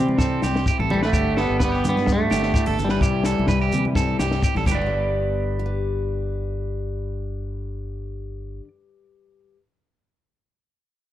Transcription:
Already playing: fingered electric bass C3, steel-string acoustic guitar E3 G3 C4 E4, trombone G3, clean electric guitar C4
0.08 high conga
0.18 clean electric guitar A4, kick, snare, shekere
0.22 steel-string acoustic guitar C4
0.42 fingered electric bass C2, steel-string acoustic guitar G2, clean electric guitar G4, snare, high conga, shekere
0.56 snare
0.66 clean electric guitar G4, kick, shekere
0.70 steel-string acoustic guitar E4
0.79 fingered electric bass A1, clean electric guitar A4, high conga
0.90 trombone E3, clean electric guitar G3, steel-string acoustic guitar C4, low conga
1.02 trombone D3, clean electric guitar A3 B4, snare
1.13 fingered electric bass G1, steel-string acoustic guitar G2 D3, clean electric guitar G4, muted steel-string acoustic guitar stroke, kick, shekere
1.18 steel-string acoustic guitar G4
1.37 trombone G3, clean electric guitar B3 A4, snare
1.41 steel-string acoustic guitar D4
1.50 fingered electric bass G1
1.59 steel-string acoustic guitar B3, clean electric guitar B4, kick, snare, shekere
1.64 trombone G3, clean electric guitar B3
1.72 clean electric guitar G4, snare
1.84 fingered electric bass G2, steel-string acoustic guitar D3, trombone G3, low conga, shekere
1.89 clean electric guitar B3
1.97 snare, high conga
2.06 trombone D3, steel-string acoustic guitar D4, muted clean electric guitar stroke, kick, snare, shekere
2.12 clean electric guitar A3
2.30 fingered electric bass G1, steel-string acoustic guitar G2, clean electric guitar G4, snare, high conga, shekere
2.43 snare
2.54 steel-string acoustic guitar E4, clean electric guitar G4, kick, shekere
2.66 fingered electric bass G1, steel-string acoustic guitar G4, clean electric guitar A4, high conga
2.79 trombone E3, steel-string acoustic guitar D4, low conga, shekere
2.85 clean electric guitar G3
2.89 clean electric guitar B4, snare
3.01 fingered electric bass C2, steel-string acoustic guitar C3 E4, clean electric guitar G4, kick, shekere
3.24 steel-string acoustic guitar C4, clean electric guitar A4, snare, shekere
3.39 fingered electric bass C2, high conga
3.47 clean electric guitar B4, kick, snare, shekere
3.51 steel-string acoustic guitar G3
3.60 clean electric guitar G4, snare
3.72 fingered electric bass C3, steel-string acoustic guitar E3, low conga, shekere
3.85 high conga
3.95 steel-string acoustic guitar C4, clean electric guitar A4, kick, snare, shekere
4.19 fingered electric bass C2, steel-string acoustic guitar G2, clean electric guitar G4, snare, high conga, shekere
4.31 snare
4.42 steel-string acoustic guitar E4, clean electric guitar G4, kick, shekere
4.55 fingered electric bass A1, clean electric guitar A4, snare, high conga
4.65 fingered electric bass G1, steel-string acoustic guitar G2, clean electric guitar G4, kick, crash, high conga, shekere
4.71 steel-string acoustic guitar D3, clean electric guitar B4
4.75 steel-string acoustic guitar B3, clean electric guitar D5
4.79 muted clean electric guitar stroke, muted steel-string acoustic guitar stroke
4.86 steel-string acoustic guitar G4
5.59 steel-string acoustic guitar G4
5.66 steel-string acoustic guitar B4

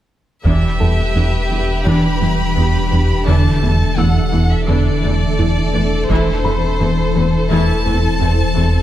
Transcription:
0.45 sub bass E1, cello section E2, analog synth bass E2, viola section E3 D4, synth pluck E3, ambient pad E3 D4 G4 E5, violin section G4 B4 E5, taiko
0.80 analog synth bass E2, cello section E2, viola section E3 G3, synth pluck G3, felt piano A4 A5
1.15 cello section E2, analog synth bass E2, viola section E3 B3, synth pluck D4
1.51 cello section E2, analog synth bass E2, viola section E3 G3, synth pluck D4
1.85 cello section E2, analog synth bass E2, viola section E3 D4, synth pluck E3, violin section B5
2.21 cello section E2, analog synth bass E2, viola section E3 G3, synth pluck G3
2.56 analog synth bass E2, cello section E2, viola section E3 B3, synth pluck D4
2.91 analog synth bass E2, cello section E2, viola section E3 G3, synth pluck G3
3.26 cello section E2, analog synth bass E2, synth pluck D3, viola section E3 D4, violin section A4 A5, ambient pad A4
3.62 cello section E2, analog synth bass E2, viola section E3, synth pluck A3
3.97 cello section E2, analog synth bass E2, viola section E3 A3, synth pluck E4, violin section F#5, felt piano E6
4.33 cello section E2, analog synth bass E2, viola section E3, synth pluck E4
4.51 violin section E5
4.68 cello section E2, analog synth bass E2, synth pluck D3, viola section E3 D4, violin section D5
5.03 cello section E2, analog synth bass E2, viola section E3, synth pluck A3
5.38 analog synth bass E2, cello section E2, viola section E3 A3, synth pluck E4
5.73 analog synth bass E2, cello section E2, viola section E3, synth pluck A3
6.09 sub bass E1, analog synth bass E2, cello section E2, ambient pad E3 E4 C5, viola section E3 E4, synth pluck A3, violin section C5, taiko
6.45 cello section E2, analog synth bass E2, viola section E3 A3, synth pluck C4, felt piano B5
6.79 cello section E2, analog synth bass E2, viola section E3 C4, synth pluck A4
7.15 cello section E2, analog synth bass E2, viola section E3 A3, synth pluck A4
7.50 cello section E2, analog synth bass E2, viola section E3 E4, synth pluck A3, violin section A5
7.86 cello section E2, analog synth bass E2, viola section E3 A3, synth pluck C4
8.20 cello section E2, analog synth bass E2, viola section E3 C4, synth pluck A4
8.55 cello section E2, analog synth bass E2, viola section E3 A3, synth pluck C4

